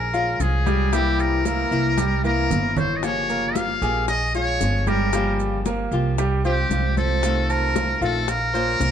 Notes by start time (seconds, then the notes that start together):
Already playing: A#1 A#4
0.13 G#3 C#4 F4 F5, high bongo, high conga, maracas
0.40 C2 F3 G#3 C#4 F4 G#4, high bongo, low bongo, high conga, maracas
0.66 G3 G4, high bongo, high conga, maracas
0.92 C3 E3 G3 A#3 C4 E4 G4, high bongo, high conga, maracas
1.19 A#4, high conga, maracas
1.45 E3 A#3 C4 E4 A#4, high bongo, high conga, maracas
1.71 C2 E3 A#3 C4 E4, high bongo, maracas
1.98 G3 G4, muted nylon-string guitar stroke, high bongo, high conga, maracas
2.24 E3 A#3 C4 E4 A#4, high bongo, maracas
2.50 G1 E3 A#3 C4 E4, high bongo, low bongo, low conga, maracas
2.76 C5 C#5, high bongo, low conga, maracas
2.96 D#5
3.02 C#3 F3 A#3 F4 G4 C#5, high bongo, high conga, maracas
3.29 A#3 A#4, high conga, maracas
3.55 F3 A#3 F4 G4 F5, high bongo, high conga, maracas
3.81 A#1 F3 A#3 F4 G4 G#4 G#5, high bongo, high conga, maracas
4.08 D#5, muted nylon-string guitar stroke, high bongo, high conga, maracas
4.34 G#3 C#4 F4 C#5 F5, high bongo, high conga, maracas
4.61 G1 F3 G#3 C#4 F4, high bongo, low bongo, high conga, maracas
4.87 G3 G4 A#4, high bongo, high conga, maracas
5.13 C#3 F3 G3 A#3 F4 G4, high bongo, maracas
5.39 high conga, maracas
5.66 F3 A#3 F4 G4 A#4, high bongo, high conga, maracas
5.91 C2 F3 A#3 F4 G4, high bongo, maracas
6.18 G3 G4, muted nylon-string guitar stroke, high bongo, high conga, maracas
6.44 F3 G3 C4 F4 G4 C5, high bongo, high conga, maracas
6.70 C2 F3 G3 C4 F4, high bongo, low bongo, high conga, maracas
6.97 C4 A4 C5, high bongo, high conga, maracas
7.23 C3 D#3 A3 C4 F4, high bongo, high conga, maracas
7.49 C4 A#4 A5, high conga, maracas
7.75 D#3 A3 C4 F4, high bongo, high conga, maracas
8.01 A#1 D#3 A3 C4 F4 A4 F5, high bongo, high conga, maracas
8.28 A#4, muted nylon-string guitar stroke, high bongo, high conga, maracas
8.54 A#3 C#4 F4 C5, high bongo, high conga, maracas
8.80 C2 A#3 C#4 F4 C5, high bongo, low bongo, high conga, maracas